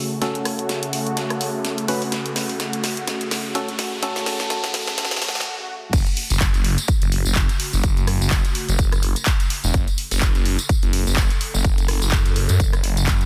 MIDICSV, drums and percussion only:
0, 0, Header, 1, 2, 480
1, 0, Start_track
1, 0, Key_signature, 3, "minor"
1, 0, Tempo, 476190
1, 219, Time_signature, 4, 2, 24, 8
1, 13362, End_track
2, 0, Start_track
2, 0, Title_t, "Drums"
2, 218, Note_on_c, 9, 38, 58
2, 218, Note_on_c, 9, 42, 80
2, 319, Note_off_c, 9, 38, 0
2, 319, Note_off_c, 9, 42, 0
2, 354, Note_on_c, 9, 42, 52
2, 455, Note_off_c, 9, 42, 0
2, 458, Note_on_c, 9, 37, 58
2, 458, Note_on_c, 9, 46, 107
2, 558, Note_off_c, 9, 37, 0
2, 558, Note_off_c, 9, 46, 0
2, 594, Note_on_c, 9, 42, 37
2, 695, Note_off_c, 9, 42, 0
2, 698, Note_on_c, 9, 38, 61
2, 698, Note_on_c, 9, 42, 76
2, 799, Note_off_c, 9, 38, 0
2, 799, Note_off_c, 9, 42, 0
2, 834, Note_on_c, 9, 42, 55
2, 935, Note_off_c, 9, 42, 0
2, 938, Note_on_c, 9, 46, 109
2, 1038, Note_off_c, 9, 46, 0
2, 1074, Note_on_c, 9, 42, 38
2, 1175, Note_off_c, 9, 42, 0
2, 1179, Note_on_c, 9, 38, 64
2, 1179, Note_on_c, 9, 42, 77
2, 1279, Note_off_c, 9, 38, 0
2, 1279, Note_off_c, 9, 42, 0
2, 1314, Note_on_c, 9, 37, 61
2, 1314, Note_on_c, 9, 42, 52
2, 1415, Note_off_c, 9, 37, 0
2, 1415, Note_off_c, 9, 42, 0
2, 1419, Note_on_c, 9, 46, 111
2, 1520, Note_off_c, 9, 46, 0
2, 1659, Note_on_c, 9, 38, 71
2, 1659, Note_on_c, 9, 42, 78
2, 1760, Note_off_c, 9, 38, 0
2, 1760, Note_off_c, 9, 42, 0
2, 1795, Note_on_c, 9, 42, 52
2, 1896, Note_off_c, 9, 42, 0
2, 1899, Note_on_c, 9, 46, 110
2, 2000, Note_off_c, 9, 46, 0
2, 2035, Note_on_c, 9, 46, 61
2, 2135, Note_off_c, 9, 46, 0
2, 2138, Note_on_c, 9, 38, 73
2, 2138, Note_on_c, 9, 42, 74
2, 2239, Note_off_c, 9, 38, 0
2, 2239, Note_off_c, 9, 42, 0
2, 2274, Note_on_c, 9, 42, 51
2, 2375, Note_off_c, 9, 42, 0
2, 2378, Note_on_c, 9, 38, 75
2, 2378, Note_on_c, 9, 46, 111
2, 2479, Note_off_c, 9, 38, 0
2, 2479, Note_off_c, 9, 46, 0
2, 2514, Note_on_c, 9, 46, 62
2, 2615, Note_off_c, 9, 46, 0
2, 2619, Note_on_c, 9, 38, 76
2, 2619, Note_on_c, 9, 42, 77
2, 2719, Note_off_c, 9, 38, 0
2, 2719, Note_off_c, 9, 42, 0
2, 2755, Note_on_c, 9, 42, 51
2, 2856, Note_off_c, 9, 42, 0
2, 2859, Note_on_c, 9, 38, 81
2, 2859, Note_on_c, 9, 46, 112
2, 2960, Note_off_c, 9, 38, 0
2, 2960, Note_off_c, 9, 46, 0
2, 2995, Note_on_c, 9, 42, 37
2, 3096, Note_off_c, 9, 42, 0
2, 3099, Note_on_c, 9, 38, 85
2, 3099, Note_on_c, 9, 42, 75
2, 3200, Note_off_c, 9, 38, 0
2, 3200, Note_off_c, 9, 42, 0
2, 3235, Note_on_c, 9, 42, 50
2, 3336, Note_off_c, 9, 42, 0
2, 3340, Note_on_c, 9, 38, 83
2, 3340, Note_on_c, 9, 46, 111
2, 3440, Note_off_c, 9, 38, 0
2, 3440, Note_off_c, 9, 46, 0
2, 3579, Note_on_c, 9, 38, 87
2, 3579, Note_on_c, 9, 42, 78
2, 3680, Note_off_c, 9, 38, 0
2, 3680, Note_off_c, 9, 42, 0
2, 3714, Note_on_c, 9, 42, 51
2, 3815, Note_off_c, 9, 42, 0
2, 3818, Note_on_c, 9, 38, 94
2, 3818, Note_on_c, 9, 46, 120
2, 3919, Note_off_c, 9, 38, 0
2, 3919, Note_off_c, 9, 46, 0
2, 4058, Note_on_c, 9, 38, 89
2, 4058, Note_on_c, 9, 42, 78
2, 4159, Note_off_c, 9, 38, 0
2, 4159, Note_off_c, 9, 42, 0
2, 4194, Note_on_c, 9, 38, 80
2, 4194, Note_on_c, 9, 42, 48
2, 4295, Note_off_c, 9, 38, 0
2, 4295, Note_off_c, 9, 42, 0
2, 4298, Note_on_c, 9, 38, 96
2, 4298, Note_on_c, 9, 46, 110
2, 4398, Note_off_c, 9, 38, 0
2, 4398, Note_off_c, 9, 46, 0
2, 4434, Note_on_c, 9, 38, 82
2, 4434, Note_on_c, 9, 42, 36
2, 4535, Note_off_c, 9, 38, 0
2, 4535, Note_off_c, 9, 42, 0
2, 4538, Note_on_c, 9, 38, 98
2, 4538, Note_on_c, 9, 42, 75
2, 4639, Note_off_c, 9, 38, 0
2, 4639, Note_off_c, 9, 42, 0
2, 4674, Note_on_c, 9, 38, 86
2, 4674, Note_on_c, 9, 42, 51
2, 4775, Note_off_c, 9, 38, 0
2, 4775, Note_off_c, 9, 42, 0
2, 4778, Note_on_c, 9, 38, 100
2, 4778, Note_on_c, 9, 46, 111
2, 4878, Note_off_c, 9, 38, 0
2, 4878, Note_off_c, 9, 46, 0
2, 4914, Note_on_c, 9, 38, 91
2, 4914, Note_on_c, 9, 42, 36
2, 5015, Note_off_c, 9, 38, 0
2, 5015, Note_off_c, 9, 42, 0
2, 5018, Note_on_c, 9, 38, 103
2, 5018, Note_on_c, 9, 42, 77
2, 5086, Note_off_c, 9, 38, 0
2, 5086, Note_on_c, 9, 38, 88
2, 5119, Note_off_c, 9, 42, 0
2, 5154, Note_off_c, 9, 38, 0
2, 5154, Note_on_c, 9, 38, 91
2, 5154, Note_on_c, 9, 42, 50
2, 5206, Note_off_c, 9, 38, 0
2, 5206, Note_on_c, 9, 38, 92
2, 5255, Note_off_c, 9, 42, 0
2, 5258, Note_off_c, 9, 38, 0
2, 5258, Note_on_c, 9, 38, 105
2, 5258, Note_on_c, 9, 46, 114
2, 5327, Note_off_c, 9, 38, 0
2, 5327, Note_on_c, 9, 38, 93
2, 5359, Note_off_c, 9, 46, 0
2, 5395, Note_off_c, 9, 38, 0
2, 5395, Note_on_c, 9, 38, 94
2, 5447, Note_off_c, 9, 38, 0
2, 5447, Note_on_c, 9, 38, 91
2, 5548, Note_off_c, 9, 38, 0
2, 5976, Note_on_c, 9, 54, 70
2, 5978, Note_on_c, 9, 36, 119
2, 5978, Note_on_c, 9, 42, 81
2, 5978, Note_on_c, 9, 49, 103
2, 6077, Note_off_c, 9, 54, 0
2, 6079, Note_off_c, 9, 36, 0
2, 6079, Note_off_c, 9, 42, 0
2, 6079, Note_off_c, 9, 49, 0
2, 6111, Note_on_c, 9, 54, 41
2, 6115, Note_on_c, 9, 42, 55
2, 6212, Note_off_c, 9, 54, 0
2, 6215, Note_off_c, 9, 42, 0
2, 6218, Note_on_c, 9, 46, 110
2, 6319, Note_off_c, 9, 46, 0
2, 6353, Note_on_c, 9, 46, 65
2, 6354, Note_on_c, 9, 54, 77
2, 6453, Note_on_c, 9, 39, 120
2, 6454, Note_off_c, 9, 46, 0
2, 6455, Note_off_c, 9, 54, 0
2, 6458, Note_on_c, 9, 36, 121
2, 6458, Note_on_c, 9, 42, 81
2, 6459, Note_on_c, 9, 54, 66
2, 6554, Note_off_c, 9, 39, 0
2, 6559, Note_off_c, 9, 36, 0
2, 6559, Note_off_c, 9, 42, 0
2, 6560, Note_off_c, 9, 54, 0
2, 6594, Note_on_c, 9, 42, 57
2, 6597, Note_on_c, 9, 54, 41
2, 6695, Note_off_c, 9, 42, 0
2, 6697, Note_on_c, 9, 46, 105
2, 6698, Note_off_c, 9, 54, 0
2, 6798, Note_off_c, 9, 46, 0
2, 6833, Note_on_c, 9, 42, 41
2, 6834, Note_on_c, 9, 54, 74
2, 6933, Note_off_c, 9, 54, 0
2, 6933, Note_on_c, 9, 54, 64
2, 6934, Note_off_c, 9, 42, 0
2, 6937, Note_on_c, 9, 42, 82
2, 6938, Note_on_c, 9, 36, 116
2, 7034, Note_off_c, 9, 54, 0
2, 7038, Note_off_c, 9, 42, 0
2, 7039, Note_off_c, 9, 36, 0
2, 7073, Note_on_c, 9, 42, 55
2, 7074, Note_on_c, 9, 54, 45
2, 7174, Note_off_c, 9, 42, 0
2, 7175, Note_off_c, 9, 54, 0
2, 7177, Note_on_c, 9, 46, 108
2, 7278, Note_off_c, 9, 46, 0
2, 7311, Note_on_c, 9, 54, 83
2, 7412, Note_off_c, 9, 54, 0
2, 7412, Note_on_c, 9, 39, 127
2, 7417, Note_on_c, 9, 42, 84
2, 7418, Note_on_c, 9, 36, 118
2, 7418, Note_on_c, 9, 54, 67
2, 7513, Note_off_c, 9, 39, 0
2, 7518, Note_off_c, 9, 42, 0
2, 7519, Note_off_c, 9, 36, 0
2, 7519, Note_off_c, 9, 54, 0
2, 7553, Note_on_c, 9, 42, 55
2, 7555, Note_on_c, 9, 54, 37
2, 7654, Note_off_c, 9, 42, 0
2, 7656, Note_off_c, 9, 54, 0
2, 7657, Note_on_c, 9, 46, 116
2, 7758, Note_off_c, 9, 46, 0
2, 7794, Note_on_c, 9, 54, 77
2, 7895, Note_off_c, 9, 54, 0
2, 7898, Note_on_c, 9, 36, 127
2, 7898, Note_on_c, 9, 42, 83
2, 7903, Note_on_c, 9, 54, 69
2, 7998, Note_off_c, 9, 42, 0
2, 7999, Note_off_c, 9, 36, 0
2, 8004, Note_off_c, 9, 54, 0
2, 8034, Note_on_c, 9, 42, 53
2, 8036, Note_on_c, 9, 54, 40
2, 8135, Note_off_c, 9, 42, 0
2, 8137, Note_off_c, 9, 54, 0
2, 8139, Note_on_c, 9, 37, 57
2, 8139, Note_on_c, 9, 46, 110
2, 8240, Note_off_c, 9, 37, 0
2, 8240, Note_off_c, 9, 46, 0
2, 8281, Note_on_c, 9, 54, 88
2, 8374, Note_on_c, 9, 39, 127
2, 8377, Note_off_c, 9, 54, 0
2, 8377, Note_on_c, 9, 54, 73
2, 8378, Note_on_c, 9, 36, 124
2, 8379, Note_on_c, 9, 42, 82
2, 8475, Note_off_c, 9, 39, 0
2, 8478, Note_off_c, 9, 54, 0
2, 8479, Note_off_c, 9, 36, 0
2, 8480, Note_off_c, 9, 42, 0
2, 8514, Note_on_c, 9, 42, 55
2, 8517, Note_on_c, 9, 54, 42
2, 8615, Note_off_c, 9, 42, 0
2, 8618, Note_off_c, 9, 54, 0
2, 8619, Note_on_c, 9, 46, 111
2, 8720, Note_off_c, 9, 46, 0
2, 8755, Note_on_c, 9, 42, 38
2, 8763, Note_on_c, 9, 54, 73
2, 8856, Note_off_c, 9, 42, 0
2, 8858, Note_on_c, 9, 36, 118
2, 8860, Note_on_c, 9, 42, 84
2, 8864, Note_off_c, 9, 54, 0
2, 8864, Note_on_c, 9, 54, 65
2, 8959, Note_off_c, 9, 36, 0
2, 8960, Note_off_c, 9, 42, 0
2, 8964, Note_off_c, 9, 54, 0
2, 8995, Note_on_c, 9, 37, 64
2, 8995, Note_on_c, 9, 42, 54
2, 8998, Note_on_c, 9, 54, 41
2, 9096, Note_off_c, 9, 37, 0
2, 9096, Note_off_c, 9, 42, 0
2, 9099, Note_off_c, 9, 54, 0
2, 9099, Note_on_c, 9, 46, 116
2, 9200, Note_off_c, 9, 46, 0
2, 9232, Note_on_c, 9, 54, 75
2, 9235, Note_on_c, 9, 42, 38
2, 9329, Note_off_c, 9, 54, 0
2, 9329, Note_on_c, 9, 54, 72
2, 9334, Note_on_c, 9, 39, 127
2, 9336, Note_off_c, 9, 42, 0
2, 9339, Note_on_c, 9, 36, 120
2, 9339, Note_on_c, 9, 42, 83
2, 9430, Note_off_c, 9, 54, 0
2, 9435, Note_off_c, 9, 39, 0
2, 9439, Note_off_c, 9, 36, 0
2, 9440, Note_off_c, 9, 42, 0
2, 9475, Note_on_c, 9, 42, 54
2, 9478, Note_on_c, 9, 54, 41
2, 9576, Note_off_c, 9, 42, 0
2, 9579, Note_off_c, 9, 54, 0
2, 9579, Note_on_c, 9, 46, 118
2, 9679, Note_off_c, 9, 46, 0
2, 9712, Note_on_c, 9, 54, 83
2, 9813, Note_off_c, 9, 54, 0
2, 9815, Note_on_c, 9, 54, 63
2, 9819, Note_on_c, 9, 36, 126
2, 9819, Note_on_c, 9, 42, 81
2, 9916, Note_off_c, 9, 54, 0
2, 9919, Note_off_c, 9, 42, 0
2, 9920, Note_off_c, 9, 36, 0
2, 9954, Note_on_c, 9, 54, 41
2, 9955, Note_on_c, 9, 42, 51
2, 10055, Note_off_c, 9, 54, 0
2, 10056, Note_off_c, 9, 42, 0
2, 10059, Note_on_c, 9, 46, 114
2, 10159, Note_off_c, 9, 46, 0
2, 10194, Note_on_c, 9, 46, 66
2, 10198, Note_on_c, 9, 54, 85
2, 10293, Note_on_c, 9, 39, 123
2, 10295, Note_off_c, 9, 46, 0
2, 10298, Note_on_c, 9, 42, 80
2, 10299, Note_off_c, 9, 54, 0
2, 10299, Note_on_c, 9, 36, 127
2, 10394, Note_off_c, 9, 39, 0
2, 10399, Note_off_c, 9, 42, 0
2, 10400, Note_off_c, 9, 36, 0
2, 10430, Note_on_c, 9, 54, 41
2, 10434, Note_on_c, 9, 42, 52
2, 10531, Note_off_c, 9, 54, 0
2, 10535, Note_off_c, 9, 42, 0
2, 10538, Note_on_c, 9, 46, 110
2, 10639, Note_off_c, 9, 46, 0
2, 10671, Note_on_c, 9, 54, 90
2, 10674, Note_on_c, 9, 42, 38
2, 10771, Note_off_c, 9, 54, 0
2, 10775, Note_off_c, 9, 42, 0
2, 10779, Note_on_c, 9, 36, 125
2, 10779, Note_on_c, 9, 42, 77
2, 10785, Note_on_c, 9, 54, 65
2, 10879, Note_off_c, 9, 36, 0
2, 10880, Note_off_c, 9, 42, 0
2, 10886, Note_off_c, 9, 54, 0
2, 10910, Note_on_c, 9, 54, 39
2, 10915, Note_on_c, 9, 42, 50
2, 11010, Note_off_c, 9, 54, 0
2, 11016, Note_off_c, 9, 42, 0
2, 11019, Note_on_c, 9, 46, 111
2, 11119, Note_off_c, 9, 46, 0
2, 11158, Note_on_c, 9, 54, 82
2, 11254, Note_on_c, 9, 39, 122
2, 11259, Note_off_c, 9, 54, 0
2, 11259, Note_on_c, 9, 36, 125
2, 11259, Note_on_c, 9, 42, 80
2, 11355, Note_off_c, 9, 39, 0
2, 11359, Note_off_c, 9, 36, 0
2, 11360, Note_off_c, 9, 42, 0
2, 11395, Note_on_c, 9, 42, 51
2, 11397, Note_on_c, 9, 54, 38
2, 11496, Note_off_c, 9, 42, 0
2, 11498, Note_off_c, 9, 54, 0
2, 11499, Note_on_c, 9, 46, 118
2, 11600, Note_off_c, 9, 46, 0
2, 11637, Note_on_c, 9, 54, 81
2, 11738, Note_off_c, 9, 54, 0
2, 11738, Note_on_c, 9, 36, 126
2, 11739, Note_on_c, 9, 42, 75
2, 11739, Note_on_c, 9, 54, 59
2, 11839, Note_off_c, 9, 36, 0
2, 11839, Note_off_c, 9, 54, 0
2, 11840, Note_off_c, 9, 42, 0
2, 11874, Note_on_c, 9, 54, 44
2, 11875, Note_on_c, 9, 42, 51
2, 11975, Note_off_c, 9, 54, 0
2, 11976, Note_off_c, 9, 42, 0
2, 11979, Note_on_c, 9, 37, 60
2, 11979, Note_on_c, 9, 46, 110
2, 12080, Note_off_c, 9, 37, 0
2, 12080, Note_off_c, 9, 46, 0
2, 12114, Note_on_c, 9, 54, 89
2, 12213, Note_on_c, 9, 39, 117
2, 12215, Note_off_c, 9, 54, 0
2, 12218, Note_on_c, 9, 36, 127
2, 12218, Note_on_c, 9, 42, 73
2, 12218, Note_on_c, 9, 54, 68
2, 12314, Note_off_c, 9, 39, 0
2, 12318, Note_off_c, 9, 54, 0
2, 12319, Note_off_c, 9, 36, 0
2, 12319, Note_off_c, 9, 42, 0
2, 12354, Note_on_c, 9, 42, 51
2, 12354, Note_on_c, 9, 54, 42
2, 12455, Note_off_c, 9, 42, 0
2, 12455, Note_off_c, 9, 54, 0
2, 12458, Note_on_c, 9, 46, 110
2, 12559, Note_off_c, 9, 46, 0
2, 12589, Note_on_c, 9, 54, 90
2, 12594, Note_on_c, 9, 42, 36
2, 12690, Note_off_c, 9, 54, 0
2, 12695, Note_off_c, 9, 42, 0
2, 12699, Note_on_c, 9, 36, 116
2, 12699, Note_on_c, 9, 42, 76
2, 12699, Note_on_c, 9, 54, 75
2, 12799, Note_off_c, 9, 36, 0
2, 12799, Note_off_c, 9, 42, 0
2, 12800, Note_off_c, 9, 54, 0
2, 12835, Note_on_c, 9, 37, 65
2, 12835, Note_on_c, 9, 42, 50
2, 12839, Note_on_c, 9, 54, 40
2, 12936, Note_off_c, 9, 37, 0
2, 12936, Note_off_c, 9, 42, 0
2, 12939, Note_off_c, 9, 54, 0
2, 12939, Note_on_c, 9, 46, 113
2, 13040, Note_off_c, 9, 46, 0
2, 13074, Note_on_c, 9, 54, 76
2, 13075, Note_on_c, 9, 42, 35
2, 13174, Note_on_c, 9, 39, 124
2, 13175, Note_off_c, 9, 54, 0
2, 13176, Note_off_c, 9, 42, 0
2, 13177, Note_on_c, 9, 54, 67
2, 13178, Note_on_c, 9, 36, 127
2, 13179, Note_on_c, 9, 42, 78
2, 13274, Note_off_c, 9, 39, 0
2, 13278, Note_off_c, 9, 54, 0
2, 13279, Note_off_c, 9, 36, 0
2, 13279, Note_off_c, 9, 42, 0
2, 13314, Note_on_c, 9, 54, 42
2, 13315, Note_on_c, 9, 42, 50
2, 13362, Note_off_c, 9, 42, 0
2, 13362, Note_off_c, 9, 54, 0
2, 13362, End_track
0, 0, End_of_file